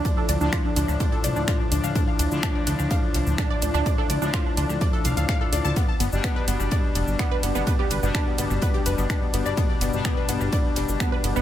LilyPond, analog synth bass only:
\new Staff \with { instrumentName = "Analog synth bass" } { \clef bass \time 4/4 \key d \dorian \tempo 4 = 126 r8 d,16 d,16 r8 d,16 d,16 r8 c,16 d,16 r8 d,16 d,16 | r8 d,16 d,16 r8 d,16 d,16 r8 c,16 d,16 r8 d,16 d,16 | r8 d,16 d,16 r8 d,16 d,16 r8 c,16 d,16 r8 d,16 d,16 | r8 g,,16 g,,16 r8 g,,16 g,,16 r8 f,,16 g,,16 r8 g,,16 g,,16 |
r8 g,,16 g,,16 r8 g,,16 g,,16 r8 f,,16 g,,16 r8 g,,16 g,,16 | r8 g,,16 g,,16 r8 g,,16 g,,16 r8 f,,16 g,,16 r8 g,,16 g,,16 | }